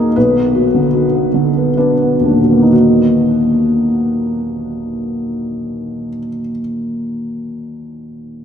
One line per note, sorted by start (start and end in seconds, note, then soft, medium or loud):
0.00 0.12 D#2 soft
0.00 0.18 D#3 soft
0.00 0.18 A#3 soft
0.00 0.18 D#4 soft
0.00 0.18 F#4 soft
0.00 0.18 G#4 medium
0.00 0.16 A#4 medium
0.00 0.18 D#5 medium
0.16 2.69 B1 soft
0.16 1.76 B4 medium
0.36 0.66 B3 soft
0.54 0.85 F#4 soft
0.74 1.06 D3 soft
0.94 1.26 F#4 soft
1.15 1.48 B3 soft
1.34 1.69 D3 soft
1.57 1.92 B3 soft
1.77 2.15 D4 soft
1.77 2.71 B4 medium
2.02 2.39 B3 soft
2.20 6.08 D#2 soft
2.26 2.63 D4 soft
2.30 6.19 A#2 soft
2.41 6.29 F#3 soft
2.50 6.40 A#3 soft
2.50 2.72 B3 soft
2.62 6.50 D#4 soft
2.72 6.60 F#4 soft